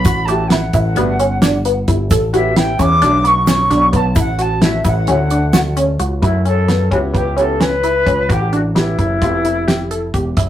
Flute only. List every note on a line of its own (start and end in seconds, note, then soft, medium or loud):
0.00 0.26 B5 medium
0.25 0.49 A5 medium
0.48 1.86 F#5 medium
2.35 2.58 E5 medium
2.56 2.82 G5 loud
2.80 3.28 D6 loud
3.27 3.48 C#6 loud
3.49 3.97 C#6 medium
3.95 4.17 A5 medium
4.19 4.42 F#5 medium
4.41 4.66 A5 medium
4.64 4.86 E5 medium
4.86 5.07 F#5 medium
5.10 5.74 F#5 medium
6.23 6.44 E4 medium
6.46 6.89 A4 medium
6.91 6.97 F#4 medium
7.14 7.36 G4 medium
7.38 7.62 A4 medium
7.60 8.33 B4 loud
8.31 8.53 G4 medium
8.54 8.60 F#4 medium
8.78 10.11 E4 medium